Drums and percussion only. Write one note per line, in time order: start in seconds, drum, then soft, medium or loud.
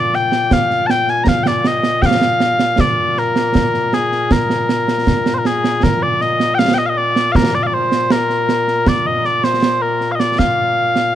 0.13 snare soft
0.32 snare medium
0.51 concert bass drum medium
0.51 snare loud
0.70 snare soft
0.90 snare medium
1.08 snare soft
1.27 concert bass drum medium
1.27 snare loud
1.46 snare medium
1.64 snare medium
1.83 snare medium
2.02 concert bass drum medium
2.02 snare loud
2.21 snare medium
2.40 snare medium
2.59 snare medium
2.78 concert bass drum medium
2.78 snare loud
3.17 snare soft
3.36 snare medium
3.55 concert bass drum medium
3.55 snare loud
3.74 snare soft
3.93 snare medium
4.12 snare soft
4.31 concert bass drum medium
4.31 snare loud
4.50 snare medium
4.69 snare medium
4.88 snare medium
5.07 concert bass drum medium
5.07 snare medium
5.26 snare medium
5.45 snare medium
5.64 snare medium
5.83 concert bass drum medium
5.83 snare loud
6.21 snare soft
6.40 snare medium
6.59 snare loud
7.16 snare medium
7.35 concert bass drum medium
7.35 snare loud
7.92 snare medium
8.10 snare loud
8.30 snare soft
8.49 snare medium
8.68 snare soft
8.87 concert bass drum medium
8.87 snare loud
9.25 snare soft
9.44 snare medium
9.63 snare medium
10.01 snare soft
10.20 snare medium
10.39 concert bass drum medium
10.39 snare medium
10.96 snare medium